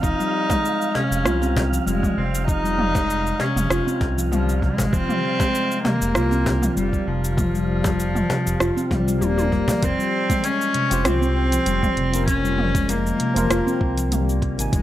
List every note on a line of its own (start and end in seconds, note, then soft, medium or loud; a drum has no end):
0.00 0.14 F1 loud
0.00 0.18 F3 medium
0.00 0.96 D#4 loud
0.00 9.84 F5 medium
0.00 kick loud
0.00 cabasa medium
0.19 0.33 G3 medium
0.19 cabasa soft
0.50 0.58 G#3 medium
0.50 kick loud
0.50 cajon slap medium
0.50 mid tom medium
0.50 cabasa medium
0.65 cabasa medium
0.82 cabasa soft
0.95 1.24 C3 medium
0.95 1.56 C#4 loud
0.95 cajon slap medium
1.11 1.27 F1 medium
1.11 cabasa medium
1.25 1.79 C2 medium
1.25 1.40 F4 medium
1.25 cross-stick medium
1.25 mid tom medium
1.25 cabasa medium
1.42 1.71 C4 loud
1.42 cajon slap soft
1.42 cabasa soft
1.57 cajon bass medium
1.57 cajon slap medium
1.73 1.86 F3 medium
1.73 cabasa medium
1.87 2.08 F1 medium
1.87 2.16 G3 medium
1.87 2.20 G#3 medium
1.87 cabasa soft
2.03 kick medium
2.03 mid tom medium
2.03 cabasa soft
2.17 3.32 F1 medium
2.17 2.47 C3 medium
2.17 2.48 C4 medium
2.35 cabasa medium
2.48 2.63 F3 medium
2.48 3.41 D#4 loud
2.48 kick loud
2.48 cabasa medium
2.64 2.78 G3 medium
2.64 cabasa soft
2.79 mid tom medium
2.95 3.03 G#3 medium
2.95 kick loud
2.95 cajon slap medium
2.95 cabasa medium
3.10 cabasa medium
3.27 cabasa soft
3.40 3.69 C3 medium
3.40 4.01 C#4 medium
3.40 cajon slap medium
3.56 3.66 F1 medium
3.56 mid tom medium
3.56 cabasa medium
3.70 3.81 F1 medium
3.70 3.85 F4 medium
3.70 cross-stick medium
3.70 cabasa medium
3.87 4.16 C4 medium
3.87 cabasa soft
4.01 4.70 C2 loud
4.01 kick medium
4.01 cajon slap medium
4.18 4.31 F3 medium
4.18 cabasa medium
4.32 4.60 F3 medium
4.32 4.61 G3 medium
4.32 mid tom medium
4.32 cabasa soft
4.49 cabasa soft
4.62 4.92 C3 medium
4.62 4.94 G#3 loud
4.62 kick medium
4.62 cajon slap soft
4.78 4.88 G#1 medium
4.78 cajon bass medium
4.78 cabasa medium
4.93 5.04 F1 medium
4.93 5.08 F3 medium
4.93 5.84 C4 loud
4.93 kick loud
4.93 cabasa medium
5.09 5.23 G3 medium
5.09 mid tom medium
5.09 cabasa soft
5.40 5.48 G#3 medium
5.40 kick loud
5.40 cajon slap medium
5.40 cabasa medium
5.55 cabasa medium
5.71 cabasa soft
5.85 6.14 C3 medium
5.85 6.72 A#3 loud
5.85 cajon slap medium
5.85 mid tom medium
6.01 6.17 F1 medium
6.01 cabasa medium
6.15 6.69 C2 loud
6.15 6.30 F4 medium
6.15 cross-stick medium
6.15 cabasa medium
6.31 6.61 C4 loud
6.31 cajon slap soft
6.31 cabasa soft
6.46 cajon bass medium
6.46 cajon slap medium
6.62 6.76 F3 medium
6.62 mid tom medium
6.62 cabasa medium
6.76 6.98 F1 medium
6.76 7.09 G3 loud
6.76 7.06 G3 medium
6.76 cabasa soft
6.93 kick medium
6.93 cabasa soft
7.07 8.22 F1 medium
7.07 7.37 C3 medium
7.07 8.90 F3 medium
7.24 cabasa medium
7.37 7.53 F3 medium
7.37 kick loud
7.37 mid tom medium
7.37 cabasa medium
7.55 7.68 G3 medium
7.55 cabasa soft
7.84 7.93 G3 medium
7.84 kick loud
7.84 cajon slap medium
7.84 cabasa medium
8.00 cabasa medium
8.15 mid tom medium
8.15 cabasa soft
8.30 8.59 C3 medium
8.30 cajon slap medium
8.46 8.56 F1 medium
8.46 cabasa medium
8.60 8.71 F1 medium
8.60 8.75 F4 medium
8.60 cross-stick medium
8.60 cabasa medium
8.77 8.89 C4 medium
8.77 cabasa soft
8.91 9.21 C2 loud
8.91 9.07 F3 loud
8.91 9.19 G3 medium
8.91 kick loud
8.91 cajon slap medium
8.91 mid tom medium
9.07 9.20 G3 medium
9.07 cabasa medium
9.21 9.54 D#1 medium
9.21 9.37 G3 loud
9.21 9.85 A#3 loud
9.21 high tom medium
9.21 cabasa medium
9.38 high tom medium
9.38 cabasa soft
9.52 9.63 F1 medium
9.52 9.68 G3 loud
9.52 kick medium
9.52 cajon slap soft
9.68 cajon bass loud
9.68 mid tom medium
9.68 cabasa medium
9.83 9.94 F1 loud
9.83 9.98 F3 medium
9.83 10.46 C4 loud
9.83 kick loud
9.83 closed hi-hat medium
9.83 cabasa medium
9.99 10.13 G3 medium
9.99 cabasa soft
10.30 10.38 G#3 medium
10.30 kick loud
10.30 closed hi-hat soft
10.30 mid tom medium
10.30 cabasa medium
10.44 11.07 C#4 loud
10.44 closed hi-hat medium
10.44 cabasa medium
10.61 cabasa soft
10.74 11.04 C3 medium
10.74 closed hi-hat soft
10.90 11.07 F1 medium
10.90 12.09 C4 medium
10.90 12.10 F4 medium
10.90 12.10 G4 loud
10.90 12.11 C5 loud
10.90 closed hi-hat soft
10.90 cabasa medium
11.05 11.59 C2 medium
11.05 12.27 C4 loud
11.05 11.20 F4 medium
11.05 cross-stick medium
11.05 closed hi-hat medium
11.05 mid tom medium
11.05 cabasa medium
11.22 11.51 C4 loud
11.22 cabasa soft
11.52 11.66 F3 medium
11.52 closed hi-hat soft
11.52 cabasa medium
11.66 11.87 F1 medium
11.66 11.96 G3 medium
11.66 closed hi-hat medium
11.66 cabasa soft
11.83 kick medium
11.83 mid tom medium
11.83 cabasa soft
11.97 13.12 F1 medium
11.97 12.26 C3 medium
11.97 closed hi-hat soft
12.11 13.31 F3 medium
12.11 13.32 A#3 medium
12.11 13.32 C#4 medium
12.11 13.33 F4 medium
12.11 closed hi-hat soft
12.11 cabasa medium
12.16 13.33 A#4 loud
12.28 12.43 F3 medium
12.28 12.91 C#4 loud
12.28 kick loud
12.28 closed hi-hat medium
12.28 cabasa medium
12.44 12.58 G3 medium
12.44 cabasa soft
12.58 mid tom medium
12.75 12.83 G#3 medium
12.75 kick loud
12.75 closed hi-hat soft
12.75 cabasa medium
12.89 14.42 A#3 loud
12.89 closed hi-hat medium
12.89 cabasa medium
13.07 cabasa soft
13.20 13.49 C3 medium
13.20 closed hi-hat soft
13.34 13.45 F1 medium
13.34 14.53 F3 loud
13.34 14.54 A#3 medium
13.34 14.55 F4 medium
13.34 14.55 A#4 loud
13.34 closed hi-hat soft
13.34 mid tom medium
13.34 cabasa medium
13.50 13.61 F1 medium
13.50 13.65 F4 medium
13.50 cross-stick medium
13.50 closed hi-hat medium
13.50 cabasa medium
13.67 13.96 C4 loud
13.67 cabasa soft
13.81 14.49 C2 loud
13.81 kick loud
13.98 14.11 F3 medium
13.98 closed hi-hat soft
13.98 cabasa medium
14.12 14.41 G3 medium
14.12 closed hi-hat medium
14.12 mid tom medium
14.12 cabasa medium
14.29 cabasa soft
14.42 14.71 C3 medium
14.42 kick medium
14.42 closed hi-hat soft
14.56 14.68 G#1 medium
14.56 14.82 D#3 medium
14.56 14.82 A#3 medium
14.56 14.82 D#4 medium
14.56 closed hi-hat soft
14.56 cabasa medium
14.61 14.82 G#5 medium
14.73 14.82 F1 medium
14.73 14.82 F3 medium
14.73 14.82 G#3 loud
14.73 kick loud
14.73 closed hi-hat medium
14.73 cabasa medium